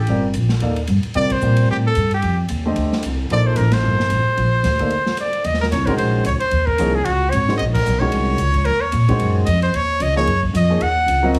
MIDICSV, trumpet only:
0, 0, Header, 1, 2, 480
1, 0, Start_track
1, 0, Tempo, 268336
1, 140, Time_signature, 4, 2, 24, 8
1, 20376, End_track
2, 0, Start_track
2, 0, Title_t, "Trumpet"
2, 0, Program_c, 0, 56
2, 0, Note_on_c, 0, 67, 65
2, 444, Note_off_c, 0, 67, 0
2, 2073, Note_on_c, 0, 74, 101
2, 2361, Note_on_c, 0, 72, 85
2, 2388, Note_off_c, 0, 74, 0
2, 3035, Note_off_c, 0, 72, 0
2, 3051, Note_on_c, 0, 67, 74
2, 3170, Note_off_c, 0, 67, 0
2, 3339, Note_on_c, 0, 69, 75
2, 3770, Note_off_c, 0, 69, 0
2, 3824, Note_on_c, 0, 67, 65
2, 4254, Note_off_c, 0, 67, 0
2, 5949, Note_on_c, 0, 74, 100
2, 6198, Note_on_c, 0, 72, 73
2, 6225, Note_off_c, 0, 74, 0
2, 6384, Note_on_c, 0, 70, 82
2, 6411, Note_off_c, 0, 72, 0
2, 6675, Note_on_c, 0, 72, 84
2, 6702, Note_off_c, 0, 70, 0
2, 9277, Note_off_c, 0, 72, 0
2, 9309, Note_on_c, 0, 74, 83
2, 9746, Note_on_c, 0, 75, 91
2, 9772, Note_off_c, 0, 74, 0
2, 10025, Note_off_c, 0, 75, 0
2, 10036, Note_on_c, 0, 70, 68
2, 10126, Note_off_c, 0, 70, 0
2, 10222, Note_on_c, 0, 73, 83
2, 10484, Note_on_c, 0, 70, 79
2, 10511, Note_off_c, 0, 73, 0
2, 10679, Note_off_c, 0, 70, 0
2, 10690, Note_on_c, 0, 72, 86
2, 11147, Note_off_c, 0, 72, 0
2, 11200, Note_on_c, 0, 73, 86
2, 11324, Note_off_c, 0, 73, 0
2, 11440, Note_on_c, 0, 72, 82
2, 11916, Note_on_c, 0, 70, 83
2, 11943, Note_off_c, 0, 72, 0
2, 12431, Note_on_c, 0, 68, 77
2, 12458, Note_off_c, 0, 70, 0
2, 12606, Note_on_c, 0, 66, 85
2, 12632, Note_off_c, 0, 68, 0
2, 13059, Note_on_c, 0, 73, 91
2, 13086, Note_off_c, 0, 66, 0
2, 13536, Note_off_c, 0, 73, 0
2, 13546, Note_on_c, 0, 75, 97
2, 13681, Note_off_c, 0, 75, 0
2, 13834, Note_on_c, 0, 70, 85
2, 14300, Note_on_c, 0, 73, 97
2, 14327, Note_off_c, 0, 70, 0
2, 15475, Note_on_c, 0, 70, 100
2, 15502, Note_off_c, 0, 73, 0
2, 15752, Note_on_c, 0, 73, 87
2, 15779, Note_off_c, 0, 70, 0
2, 16727, Note_off_c, 0, 73, 0
2, 16908, Note_on_c, 0, 75, 89
2, 17184, Note_off_c, 0, 75, 0
2, 17223, Note_on_c, 0, 72, 91
2, 17444, Note_on_c, 0, 73, 101
2, 17471, Note_off_c, 0, 72, 0
2, 17926, Note_on_c, 0, 75, 99
2, 17953, Note_off_c, 0, 73, 0
2, 18180, Note_off_c, 0, 75, 0
2, 18191, Note_on_c, 0, 73, 95
2, 18632, Note_off_c, 0, 73, 0
2, 18887, Note_on_c, 0, 75, 94
2, 19357, Note_on_c, 0, 78, 104
2, 19384, Note_off_c, 0, 75, 0
2, 20305, Note_off_c, 0, 78, 0
2, 20376, End_track
0, 0, End_of_file